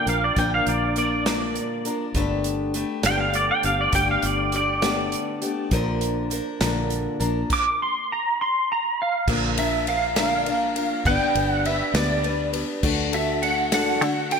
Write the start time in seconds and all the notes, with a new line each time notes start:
0.06 A#1 F3 A#3 D4 A#4 F5, closed hi-hat
0.24 D5
0.36 A#1 A#2 D3 F3 A#3 D4 A#4 G5, kick, closed hi-hat
0.54 F5
0.67 A#1 D5, closed hi-hat
0.96 F3 A#3 D4 A#4 D5, closed hi-hat
1.26 A#2 D3 F3 A#3 D4 A#4, snare, closed hi-hat
1.56 closed hi-hat
1.85 F3 A#3 D4 A#4, closed hi-hat
2.14 G1 G2 D3 A3 B3 D4 G4, kick, closed hi-hat
2.44 closed hi-hat
2.74 A3 B3 D4 G4, closed hi-hat
3.03 G1 G2 D3 A3 B3 D4 G4 G5, snare, closed hi-hat
3.20 F5
3.34 D5, closed hi-hat
3.51 G5
3.63 G1 A3 B3 D4 G4 F5, closed hi-hat
3.81 D5
3.93 G1 G2 D3 A3 B3 D4 G4 G5, kick, closed hi-hat
4.11 F5
4.22 G1 D5, closed hi-hat
4.52 A3 B3 D4 G4 D5, closed hi-hat
4.82 G2 D3 A3 B3 D4 G4, snare, closed hi-hat
5.12 closed hi-hat
5.42 A3 B3 D4 G4, closed hi-hat
5.71 A#1 A#2 D3 F3 A#3 D4 A#4, kick, closed hi-hat
6.01 closed hi-hat
6.30 F3 A#3 D4 A#4, closed hi-hat
6.60 A#1 A#2 D3 F3 A#3 D4 A#4, snare, closed hi-hat
6.90 closed hi-hat
7.20 A#1 F3 A#3 D4 A#4, closed hi-hat
7.50 D6, kick, crash
7.82 C6
8.12 A#5
8.41 C6
8.72 A#5
9.02 F5
9.28 A#1 A#2 D3 F3 A#3 D4 A#4, kick, crash
9.58 F3 A#3 D4 A#4 E5, ride
9.87 F3 A#3 D4 A#4 F5, ride
10.16 A#2 D3 F3 A#3 D4 A#4 F5, snare, ride
10.46 A1 F3 A#3 D4 A#4, ride
10.76 F3 A#3 D4 A#4, ride
11.05 G1 G2 D3 G3 B3 D4 B4 G5, kick, ride
11.35 G1 G3 B3 D4 B4, ride
11.51 F#5
11.65 G3 B3 D4 B4 E5, ride
11.94 D2 G2 D3 G3 B3 D4 B4 D5, snare, ride
12.23 G3 B3 D4 B4, ride
12.53 G3 B3 D4 B4, ride
12.83 D2 D3 A3 D4 F#4 A4, kick, crash
13.13 D4 F#4 A4 E5, ride
13.42 A3 D4 F#4 A4 F#5, ride
13.72 D3 A3 D4 F#4 A4 F#5, snare, ride
14.01 D3 A3 D4 F#4 A4, ride
14.31 D4 F#4 A4 G5, ride